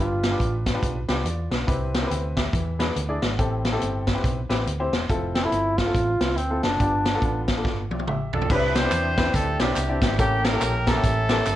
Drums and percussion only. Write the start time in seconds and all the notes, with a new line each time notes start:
0.23 snare, closed hi-hat
0.40 kick, closed hi-hat
0.66 kick, snare, closed hi-hat
0.83 kick, closed hi-hat
1.09 snare, closed hi-hat
1.26 closed hi-hat
1.52 snare, closed hi-hat
1.68 kick, closed hi-hat
1.95 snare, closed hi-hat
2.11 closed hi-hat
2.37 kick, snare, closed hi-hat
2.54 kick, closed hi-hat
2.80 snare, closed hi-hat
2.96 closed hi-hat
3.23 snare, closed hi-hat
3.39 kick, closed hi-hat
3.65 snare, closed hi-hat
3.82 closed hi-hat
4.07 kick, snare, closed hi-hat
4.24 kick, closed hi-hat
4.51 snare, closed hi-hat
4.67 closed hi-hat
4.93 snare, closed hi-hat
5.10 kick, closed hi-hat
5.35 snare, closed hi-hat
5.52 closed hi-hat
5.78 kick, snare, closed hi-hat
5.95 kick, closed hi-hat
6.21 snare, closed hi-hat
6.37 closed hi-hat
6.63 snare, closed hi-hat
6.80 kick, closed hi-hat
7.05 snare, closed hi-hat
7.22 kick, closed hi-hat
7.48 kick, snare, closed hi-hat
7.65 kick, snare
7.91 high tom
7.99 high tom
8.07 mid tom
8.33 floor tom
8.41 floor tom
8.50 kick, crash, tambourine
8.76 snare, closed hi-hat, tambourine
8.92 clap, closed hi-hat, tambourine
9.18 kick, snare, closed hi-hat, tambourine
9.34 kick, closed hi-hat, tambourine
9.60 snare, closed hi-hat, tambourine
9.76 clap, closed hi-hat, tambourine
10.02 kick, snare, closed hi-hat, tambourine
10.19 kick, closed hi-hat, tambourine
10.45 snare, closed hi-hat, tambourine
10.61 clap, closed hi-hat, tambourine
10.87 kick, snare, closed hi-hat, tambourine
11.04 kick, closed hi-hat, tambourine
11.29 snare, closed hi-hat, tambourine
11.45 clap, closed hi-hat, tambourine